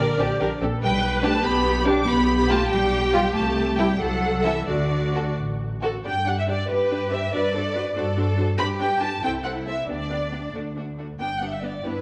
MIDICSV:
0, 0, Header, 1, 6, 480
1, 0, Start_track
1, 0, Key_signature, 1, "major"
1, 0, Tempo, 421348
1, 933, Time_signature, 6, 3, 24, 8
1, 3817, Tempo, 436047
1, 4777, Tempo, 455581
1, 6697, Tempo, 423131
1, 10057, Tempo, 435730
1, 13371, End_track
2, 0, Start_track
2, 0, Title_t, "Violin section"
2, 0, Program_c, 0, 48
2, 0, Note_on_c, 0, 74, 113
2, 699, Note_off_c, 0, 74, 0
2, 938, Note_on_c, 0, 79, 126
2, 1377, Note_off_c, 0, 79, 0
2, 1416, Note_on_c, 0, 81, 126
2, 1644, Note_off_c, 0, 81, 0
2, 1645, Note_on_c, 0, 83, 127
2, 2122, Note_off_c, 0, 83, 0
2, 2123, Note_on_c, 0, 86, 127
2, 2358, Note_on_c, 0, 83, 127
2, 2363, Note_off_c, 0, 86, 0
2, 2842, Note_off_c, 0, 83, 0
2, 2849, Note_on_c, 0, 81, 127
2, 3075, Note_on_c, 0, 79, 127
2, 3089, Note_off_c, 0, 81, 0
2, 3799, Note_off_c, 0, 79, 0
2, 3821, Note_on_c, 0, 81, 115
2, 4286, Note_off_c, 0, 81, 0
2, 4289, Note_on_c, 0, 79, 103
2, 4531, Note_on_c, 0, 78, 115
2, 4533, Note_off_c, 0, 79, 0
2, 5008, Note_on_c, 0, 76, 106
2, 5013, Note_off_c, 0, 78, 0
2, 5245, Note_on_c, 0, 74, 99
2, 5254, Note_off_c, 0, 76, 0
2, 5963, Note_off_c, 0, 74, 0
2, 6694, Note_on_c, 0, 74, 71
2, 6785, Note_off_c, 0, 74, 0
2, 6938, Note_on_c, 0, 74, 63
2, 7029, Note_off_c, 0, 74, 0
2, 7189, Note_on_c, 0, 74, 60
2, 7279, Note_off_c, 0, 74, 0
2, 7428, Note_on_c, 0, 74, 65
2, 7519, Note_off_c, 0, 74, 0
2, 7674, Note_on_c, 0, 74, 57
2, 7764, Note_off_c, 0, 74, 0
2, 7916, Note_on_c, 0, 74, 59
2, 8007, Note_off_c, 0, 74, 0
2, 8159, Note_on_c, 0, 72, 67
2, 8250, Note_off_c, 0, 72, 0
2, 8397, Note_on_c, 0, 72, 69
2, 8488, Note_off_c, 0, 72, 0
2, 8644, Note_on_c, 0, 72, 70
2, 8735, Note_off_c, 0, 72, 0
2, 8878, Note_on_c, 0, 72, 73
2, 8968, Note_off_c, 0, 72, 0
2, 9107, Note_on_c, 0, 72, 70
2, 9198, Note_off_c, 0, 72, 0
2, 9351, Note_on_c, 0, 72, 75
2, 9442, Note_off_c, 0, 72, 0
2, 9585, Note_on_c, 0, 71, 75
2, 9676, Note_off_c, 0, 71, 0
2, 9833, Note_on_c, 0, 71, 64
2, 9924, Note_off_c, 0, 71, 0
2, 10063, Note_on_c, 0, 71, 67
2, 10151, Note_off_c, 0, 71, 0
2, 10301, Note_on_c, 0, 72, 73
2, 10389, Note_off_c, 0, 72, 0
2, 10541, Note_on_c, 0, 72, 66
2, 10630, Note_off_c, 0, 72, 0
2, 10787, Note_on_c, 0, 72, 60
2, 10875, Note_off_c, 0, 72, 0
2, 11022, Note_on_c, 0, 67, 61
2, 11110, Note_off_c, 0, 67, 0
2, 11270, Note_on_c, 0, 67, 54
2, 11358, Note_off_c, 0, 67, 0
2, 11509, Note_on_c, 0, 67, 54
2, 11597, Note_off_c, 0, 67, 0
2, 11755, Note_on_c, 0, 66, 53
2, 11843, Note_off_c, 0, 66, 0
2, 12002, Note_on_c, 0, 66, 52
2, 12090, Note_off_c, 0, 66, 0
2, 12236, Note_on_c, 0, 66, 51
2, 12325, Note_off_c, 0, 66, 0
2, 12475, Note_on_c, 0, 67, 58
2, 12563, Note_off_c, 0, 67, 0
2, 12711, Note_on_c, 0, 67, 54
2, 12800, Note_off_c, 0, 67, 0
2, 12936, Note_on_c, 0, 67, 54
2, 13024, Note_off_c, 0, 67, 0
2, 13173, Note_on_c, 0, 67, 54
2, 13261, Note_off_c, 0, 67, 0
2, 13371, End_track
3, 0, Start_track
3, 0, Title_t, "Violin section"
3, 0, Program_c, 1, 48
3, 214, Note_on_c, 1, 62, 93
3, 217, Note_on_c, 1, 67, 95
3, 305, Note_off_c, 1, 62, 0
3, 308, Note_off_c, 1, 67, 0
3, 454, Note_on_c, 1, 67, 92
3, 458, Note_on_c, 1, 62, 85
3, 545, Note_off_c, 1, 67, 0
3, 549, Note_off_c, 1, 62, 0
3, 698, Note_on_c, 1, 67, 82
3, 699, Note_on_c, 1, 62, 82
3, 789, Note_off_c, 1, 67, 0
3, 790, Note_off_c, 1, 62, 0
3, 1397, Note_on_c, 1, 62, 91
3, 1397, Note_on_c, 1, 67, 97
3, 1512, Note_off_c, 1, 62, 0
3, 1512, Note_off_c, 1, 67, 0
3, 2115, Note_on_c, 1, 62, 101
3, 2116, Note_on_c, 1, 67, 98
3, 2230, Note_off_c, 1, 62, 0
3, 2231, Note_off_c, 1, 67, 0
3, 2840, Note_on_c, 1, 65, 94
3, 2841, Note_on_c, 1, 67, 98
3, 2955, Note_off_c, 1, 65, 0
3, 2955, Note_off_c, 1, 67, 0
3, 3564, Note_on_c, 1, 65, 94
3, 3567, Note_on_c, 1, 67, 93
3, 3683, Note_off_c, 1, 65, 0
3, 3684, Note_off_c, 1, 67, 0
3, 4294, Note_on_c, 1, 64, 92
3, 4294, Note_on_c, 1, 67, 85
3, 4406, Note_off_c, 1, 64, 0
3, 4406, Note_off_c, 1, 67, 0
3, 5012, Note_on_c, 1, 64, 80
3, 5017, Note_on_c, 1, 69, 81
3, 5126, Note_off_c, 1, 64, 0
3, 5128, Note_off_c, 1, 69, 0
3, 5749, Note_on_c, 1, 66, 78
3, 5749, Note_on_c, 1, 69, 74
3, 5859, Note_off_c, 1, 66, 0
3, 5859, Note_off_c, 1, 69, 0
3, 6460, Note_on_c, 1, 66, 76
3, 6460, Note_on_c, 1, 69, 78
3, 6572, Note_off_c, 1, 66, 0
3, 6572, Note_off_c, 1, 69, 0
3, 6702, Note_on_c, 1, 79, 105
3, 6928, Note_off_c, 1, 79, 0
3, 6941, Note_on_c, 1, 78, 92
3, 7063, Note_off_c, 1, 78, 0
3, 7077, Note_on_c, 1, 76, 89
3, 7123, Note_off_c, 1, 76, 0
3, 7200, Note_on_c, 1, 74, 92
3, 7429, Note_off_c, 1, 74, 0
3, 7438, Note_on_c, 1, 71, 99
3, 7905, Note_off_c, 1, 71, 0
3, 7915, Note_on_c, 1, 76, 98
3, 8150, Note_on_c, 1, 74, 93
3, 8152, Note_off_c, 1, 76, 0
3, 9338, Note_off_c, 1, 74, 0
3, 9572, Note_on_c, 1, 83, 120
3, 9662, Note_off_c, 1, 83, 0
3, 9816, Note_on_c, 1, 79, 100
3, 10050, Note_on_c, 1, 81, 107
3, 10052, Note_off_c, 1, 79, 0
3, 10291, Note_off_c, 1, 81, 0
3, 10301, Note_on_c, 1, 79, 114
3, 10389, Note_off_c, 1, 79, 0
3, 10531, Note_on_c, 1, 78, 92
3, 10619, Note_off_c, 1, 78, 0
3, 10784, Note_on_c, 1, 76, 91
3, 11018, Note_off_c, 1, 76, 0
3, 11024, Note_on_c, 1, 74, 83
3, 11730, Note_off_c, 1, 74, 0
3, 12472, Note_on_c, 1, 79, 97
3, 12692, Note_off_c, 1, 79, 0
3, 12696, Note_on_c, 1, 78, 77
3, 12820, Note_off_c, 1, 78, 0
3, 12820, Note_on_c, 1, 76, 66
3, 12942, Note_off_c, 1, 76, 0
3, 12942, Note_on_c, 1, 74, 73
3, 13176, Note_on_c, 1, 71, 84
3, 13180, Note_off_c, 1, 74, 0
3, 13371, Note_off_c, 1, 71, 0
3, 13371, End_track
4, 0, Start_track
4, 0, Title_t, "Viola section"
4, 0, Program_c, 2, 48
4, 0, Note_on_c, 2, 70, 108
4, 203, Note_off_c, 2, 70, 0
4, 217, Note_on_c, 2, 67, 102
4, 455, Note_off_c, 2, 67, 0
4, 459, Note_on_c, 2, 70, 99
4, 550, Note_off_c, 2, 70, 0
4, 706, Note_on_c, 2, 69, 97
4, 934, Note_off_c, 2, 69, 0
4, 938, Note_on_c, 2, 71, 112
4, 1634, Note_off_c, 2, 71, 0
4, 1645, Note_on_c, 2, 67, 111
4, 2348, Note_off_c, 2, 67, 0
4, 2362, Note_on_c, 2, 67, 120
4, 4493, Note_off_c, 2, 67, 0
4, 4536, Note_on_c, 2, 69, 104
4, 5244, Note_off_c, 2, 69, 0
4, 5258, Note_on_c, 2, 66, 82
4, 6342, Note_off_c, 2, 66, 0
4, 6702, Note_on_c, 2, 67, 61
4, 6703, Note_on_c, 2, 62, 62
4, 6793, Note_off_c, 2, 67, 0
4, 6794, Note_off_c, 2, 62, 0
4, 6947, Note_on_c, 2, 62, 65
4, 6949, Note_on_c, 2, 67, 60
4, 7038, Note_off_c, 2, 62, 0
4, 7040, Note_off_c, 2, 67, 0
4, 7188, Note_on_c, 2, 62, 58
4, 7190, Note_on_c, 2, 67, 57
4, 7278, Note_off_c, 2, 62, 0
4, 7281, Note_off_c, 2, 67, 0
4, 7428, Note_on_c, 2, 62, 61
4, 7430, Note_on_c, 2, 67, 62
4, 7518, Note_off_c, 2, 62, 0
4, 7521, Note_off_c, 2, 67, 0
4, 7670, Note_on_c, 2, 62, 64
4, 7671, Note_on_c, 2, 67, 62
4, 7761, Note_off_c, 2, 62, 0
4, 7761, Note_off_c, 2, 67, 0
4, 7909, Note_on_c, 2, 62, 59
4, 7909, Note_on_c, 2, 67, 62
4, 7999, Note_off_c, 2, 62, 0
4, 8000, Note_off_c, 2, 67, 0
4, 8151, Note_on_c, 2, 62, 67
4, 8152, Note_on_c, 2, 66, 65
4, 8242, Note_off_c, 2, 62, 0
4, 8242, Note_off_c, 2, 66, 0
4, 8393, Note_on_c, 2, 62, 67
4, 8395, Note_on_c, 2, 66, 63
4, 8484, Note_off_c, 2, 62, 0
4, 8485, Note_off_c, 2, 66, 0
4, 8626, Note_on_c, 2, 62, 65
4, 8628, Note_on_c, 2, 66, 68
4, 8716, Note_off_c, 2, 62, 0
4, 8719, Note_off_c, 2, 66, 0
4, 8862, Note_on_c, 2, 62, 74
4, 8862, Note_on_c, 2, 66, 73
4, 8953, Note_off_c, 2, 62, 0
4, 8953, Note_off_c, 2, 66, 0
4, 9097, Note_on_c, 2, 62, 69
4, 9100, Note_on_c, 2, 66, 69
4, 9188, Note_off_c, 2, 62, 0
4, 9191, Note_off_c, 2, 66, 0
4, 9334, Note_on_c, 2, 62, 68
4, 9336, Note_on_c, 2, 66, 65
4, 9425, Note_off_c, 2, 62, 0
4, 9426, Note_off_c, 2, 66, 0
4, 9573, Note_on_c, 2, 67, 71
4, 9574, Note_on_c, 2, 62, 77
4, 9664, Note_off_c, 2, 67, 0
4, 9665, Note_off_c, 2, 62, 0
4, 9814, Note_on_c, 2, 62, 74
4, 9816, Note_on_c, 2, 67, 75
4, 9904, Note_off_c, 2, 62, 0
4, 9906, Note_off_c, 2, 67, 0
4, 10059, Note_on_c, 2, 62, 65
4, 10060, Note_on_c, 2, 67, 65
4, 10147, Note_off_c, 2, 62, 0
4, 10148, Note_off_c, 2, 67, 0
4, 10298, Note_on_c, 2, 60, 72
4, 10298, Note_on_c, 2, 69, 66
4, 10386, Note_off_c, 2, 69, 0
4, 10387, Note_off_c, 2, 60, 0
4, 10538, Note_on_c, 2, 60, 63
4, 10541, Note_on_c, 2, 69, 65
4, 10626, Note_off_c, 2, 60, 0
4, 10629, Note_off_c, 2, 69, 0
4, 10778, Note_on_c, 2, 69, 57
4, 10780, Note_on_c, 2, 60, 53
4, 10866, Note_off_c, 2, 69, 0
4, 10868, Note_off_c, 2, 60, 0
4, 11011, Note_on_c, 2, 59, 58
4, 11013, Note_on_c, 2, 62, 61
4, 11099, Note_off_c, 2, 59, 0
4, 11101, Note_off_c, 2, 62, 0
4, 11252, Note_on_c, 2, 62, 59
4, 11254, Note_on_c, 2, 59, 57
4, 11340, Note_off_c, 2, 62, 0
4, 11342, Note_off_c, 2, 59, 0
4, 11497, Note_on_c, 2, 62, 52
4, 11500, Note_on_c, 2, 59, 52
4, 11585, Note_off_c, 2, 62, 0
4, 11588, Note_off_c, 2, 59, 0
4, 11739, Note_on_c, 2, 57, 52
4, 11742, Note_on_c, 2, 62, 57
4, 11827, Note_off_c, 2, 57, 0
4, 11830, Note_off_c, 2, 62, 0
4, 11986, Note_on_c, 2, 57, 50
4, 11987, Note_on_c, 2, 62, 49
4, 12074, Note_off_c, 2, 57, 0
4, 12075, Note_off_c, 2, 62, 0
4, 12228, Note_on_c, 2, 57, 46
4, 12231, Note_on_c, 2, 62, 43
4, 12316, Note_off_c, 2, 57, 0
4, 12319, Note_off_c, 2, 62, 0
4, 12465, Note_on_c, 2, 59, 55
4, 12466, Note_on_c, 2, 62, 53
4, 12554, Note_off_c, 2, 59, 0
4, 12554, Note_off_c, 2, 62, 0
4, 12703, Note_on_c, 2, 59, 53
4, 12708, Note_on_c, 2, 62, 55
4, 12791, Note_off_c, 2, 59, 0
4, 12797, Note_off_c, 2, 62, 0
4, 12939, Note_on_c, 2, 59, 50
4, 12941, Note_on_c, 2, 62, 51
4, 13027, Note_off_c, 2, 59, 0
4, 13029, Note_off_c, 2, 62, 0
4, 13186, Note_on_c, 2, 59, 57
4, 13186, Note_on_c, 2, 62, 52
4, 13274, Note_off_c, 2, 59, 0
4, 13275, Note_off_c, 2, 62, 0
4, 13371, End_track
5, 0, Start_track
5, 0, Title_t, "Cello section"
5, 0, Program_c, 3, 48
5, 0, Note_on_c, 3, 50, 89
5, 670, Note_off_c, 3, 50, 0
5, 939, Note_on_c, 3, 55, 108
5, 1378, Note_off_c, 3, 55, 0
5, 1408, Note_on_c, 3, 57, 114
5, 1645, Note_off_c, 3, 57, 0
5, 1649, Note_on_c, 3, 59, 118
5, 2115, Note_off_c, 3, 59, 0
5, 2124, Note_on_c, 3, 62, 115
5, 2359, Note_off_c, 3, 62, 0
5, 2364, Note_on_c, 3, 59, 119
5, 2836, Note_off_c, 3, 59, 0
5, 2848, Note_on_c, 3, 57, 115
5, 2939, Note_off_c, 3, 57, 0
5, 3085, Note_on_c, 3, 55, 119
5, 3804, Note_off_c, 3, 55, 0
5, 3816, Note_on_c, 3, 57, 117
5, 4283, Note_off_c, 3, 57, 0
5, 4295, Note_on_c, 3, 55, 94
5, 4532, Note_on_c, 3, 54, 108
5, 4536, Note_off_c, 3, 55, 0
5, 5009, Note_on_c, 3, 52, 91
5, 5014, Note_off_c, 3, 54, 0
5, 5255, Note_off_c, 3, 52, 0
5, 5259, Note_on_c, 3, 50, 82
5, 5970, Note_off_c, 3, 50, 0
5, 7426, Note_on_c, 3, 67, 86
5, 8104, Note_off_c, 3, 67, 0
5, 8152, Note_on_c, 3, 71, 98
5, 8390, Note_off_c, 3, 71, 0
5, 8392, Note_on_c, 3, 69, 79
5, 8627, Note_off_c, 3, 69, 0
5, 8630, Note_on_c, 3, 71, 80
5, 8864, Note_off_c, 3, 71, 0
5, 8867, Note_on_c, 3, 69, 94
5, 9566, Note_off_c, 3, 69, 0
5, 9581, Note_on_c, 3, 67, 88
5, 10281, Note_off_c, 3, 67, 0
5, 10298, Note_on_c, 3, 64, 83
5, 11006, Note_off_c, 3, 64, 0
5, 11025, Note_on_c, 3, 62, 66
5, 12109, Note_off_c, 3, 62, 0
5, 13181, Note_on_c, 3, 64, 73
5, 13371, Note_off_c, 3, 64, 0
5, 13371, End_track
6, 0, Start_track
6, 0, Title_t, "Double bass section"
6, 0, Program_c, 4, 48
6, 217, Note_on_c, 4, 34, 100
6, 308, Note_off_c, 4, 34, 0
6, 463, Note_on_c, 4, 34, 96
6, 554, Note_off_c, 4, 34, 0
6, 697, Note_on_c, 4, 34, 101
6, 788, Note_off_c, 4, 34, 0
6, 933, Note_on_c, 4, 35, 101
6, 1526, Note_off_c, 4, 35, 0
6, 1651, Note_on_c, 4, 35, 110
6, 2245, Note_off_c, 4, 35, 0
6, 2356, Note_on_c, 4, 35, 109
6, 2962, Note_off_c, 4, 35, 0
6, 3090, Note_on_c, 4, 35, 105
6, 3698, Note_off_c, 4, 35, 0
6, 3817, Note_on_c, 4, 36, 104
6, 4414, Note_off_c, 4, 36, 0
6, 4532, Note_on_c, 4, 36, 96
6, 5135, Note_off_c, 4, 36, 0
6, 5250, Note_on_c, 4, 38, 84
6, 5860, Note_off_c, 4, 38, 0
6, 5983, Note_on_c, 4, 33, 83
6, 6581, Note_off_c, 4, 33, 0
6, 6696, Note_on_c, 4, 43, 77
6, 7340, Note_off_c, 4, 43, 0
6, 7424, Note_on_c, 4, 43, 76
6, 8063, Note_off_c, 4, 43, 0
6, 8154, Note_on_c, 4, 43, 80
6, 8780, Note_off_c, 4, 43, 0
6, 8872, Note_on_c, 4, 43, 87
6, 9498, Note_off_c, 4, 43, 0
6, 9580, Note_on_c, 4, 43, 92
6, 10211, Note_off_c, 4, 43, 0
6, 10299, Note_on_c, 4, 36, 82
6, 10935, Note_off_c, 4, 36, 0
6, 11020, Note_on_c, 4, 38, 71
6, 11657, Note_off_c, 4, 38, 0
6, 11742, Note_on_c, 4, 38, 64
6, 12384, Note_off_c, 4, 38, 0
6, 12462, Note_on_c, 4, 31, 68
6, 13095, Note_off_c, 4, 31, 0
6, 13177, Note_on_c, 4, 31, 65
6, 13371, Note_off_c, 4, 31, 0
6, 13371, End_track
0, 0, End_of_file